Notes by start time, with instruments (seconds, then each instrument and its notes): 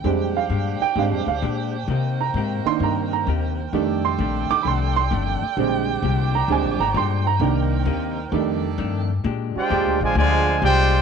Already playing: saxophone section G5
0.04 upright bass F2, hollow-body jazz guitar A#2 G#3 D4 G4, upright piano G3 G#3 C4 D4, saxophone section D4 G4 C5
0.37 upright piano F5
0.49 upright bass G2, hollow-body jazz guitar A#2 G#3 D4 G4
0.80 upright piano G5, muted upright bass stroke
0.95 upright bass G#2, hollow-body jazz guitar A#2 G#3 D4 G4, upright piano G3 G#3 C4 D4 F5
1.11 upright bass F2
1.26 upright bass D2, upright piano F5
1.42 upright bass A#2, hollow-body jazz guitar A#2 G#3 D4 G4
1.88 upright bass C3, hollow-body jazz guitar C3 A#3 D#4 G4, saxophone section D#3 A#4
2.21 upright piano A#5
2.34 upright bass G#2, hollow-body jazz guitar C3 A#3 D#4
2.38 hollow-body jazz guitar G4
2.65 upright piano D#3 A#3 D4 C6, muted upright bass stroke
2.80 upright bass G2, hollow-body jazz guitar C3 A#3 D#4, upright piano A#5
2.84 hollow-body jazz guitar G4
3.13 upright piano A#5
3.27 upright bass D#2, hollow-body jazz guitar C3 A#3 D#4 G4
3.73 hollow-body jazz guitar F2 D#3 A3 D4, upright bass F2, upright piano D#3 G3 A3 D4, saxophone section A4 D5 G5
4.05 upright piano C6
4.18 upright bass A#1, hollow-body jazz guitar F2 D#3 A3 D4
4.50 upright piano D6, muted upright bass stroke
4.63 upright bass C2, hollow-body jazz guitar F2 D#3, upright piano B5
4.67 hollow-body jazz guitar A3 D4, upright piano C6
4.96 upright piano C6
5.11 upright bass G1, hollow-body jazz guitar F2 D#3 A3 D4
5.42 muted upright bass stroke
5.57 upright bass A#1, hollow-body jazz guitar A#2 G#3 D4 G4, upright piano D3 G3 G#3 C4, saxophone section D4 G4 C5
6.02 upright bass C2, hollow-body jazz guitar A#2 G#3 D4 G4
6.35 upright piano A#5
6.48 upright bass D2, hollow-body jazz guitar A#2 G#3 D4, upright piano D3 G3 G#3 C4 G#5
6.52 hollow-body jazz guitar G4
6.63 upright bass A#1
6.78 upright bass G#1, upright piano A#5
6.94 upright bass G2, hollow-body jazz guitar A#2 G#3 D4 G4, upright piano C6
7.27 upright piano A#5
7.40 upright bass C2, hollow-body jazz guitar C3 A#3 D#4, upright piano D#3 A#3 D4, saxophone section D#3 A#4
7.44 hollow-body jazz guitar G4
7.85 upright bass D#2, hollow-body jazz guitar C3 A#3 D#4 G4
8.32 upright bass F2, hollow-body jazz guitar F2 D#3 A3 D4, upright piano D#3 G3 A3 D4, saxophone section D#3 A4 D5
8.78 hollow-body jazz guitar F2 D#3 A3 D4, upright bass G2
9.24 hollow-body jazz guitar A#2 G#3 D4 G4, upright bass A#2
9.56 trombone section G#3 D4 G4, trumpet section F4 C5 D5 G5, muted upright bass stroke
9.70 upright bass F2, hollow-body jazz guitar A#2 G#3 D4 G4
9.85 upright bass D2
10.00 upright bass A#1, trombone section D3 F3 G#3, trumpet section F4 C5 D5 G#5
10.15 upright bass D2, hollow-body jazz guitar A#2 G#3 D4 G4, trombone section D3 F3 G#3, trumpet section F4 C5 D5 G#5
10.62 upright bass C2, hollow-body jazz guitar A#2 G#3 D4 G4, trombone section G#3 D4 G4, trumpet section F4 C5 D5 G5